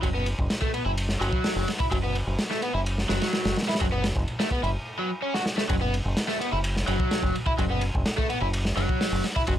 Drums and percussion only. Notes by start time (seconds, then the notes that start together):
0.03 kick, ride
0.26 ride
0.39 kick
0.50 snare, ride
0.62 kick
0.74 ride
0.98 ride
1.09 snare
1.22 ride
1.33 kick
1.44 snare, open hi-hat
1.68 snare, ride
1.80 kick
1.91 kick, ride
2.15 ride
2.39 snare, ride
2.51 snare
2.62 ride
2.86 ride
2.98 snare
3.09 snare, ride
3.21 snare, ride
3.33 snare, ride
3.45 snare, ride
3.56 snare, ride
3.62 snare, ride
3.69 snare, ride
3.75 snare, ride
3.80 kick, ride
4.04 snare, ride
4.16 kick
4.28 ride
4.40 snare, ride
4.51 kick
4.64 ride
5.34 snare
5.46 snare
5.58 snare
5.69 kick, ride
5.94 ride
6.17 snare, ride
6.28 snare
6.41 ride
6.64 ride
6.77 snare
6.87 ride
7.00 kick
7.11 snare, ride
7.23 kick
7.35 ride
7.46 kick
7.59 kick, ride
7.81 ride
7.95 kick
8.06 snare, ride
8.18 kick
8.30 ride
8.53 ride
8.65 snare
8.77 ride
8.89 kick
9.01 snare, open hi-hat
9.24 snare, ride
9.36 kick
9.47 kick, ride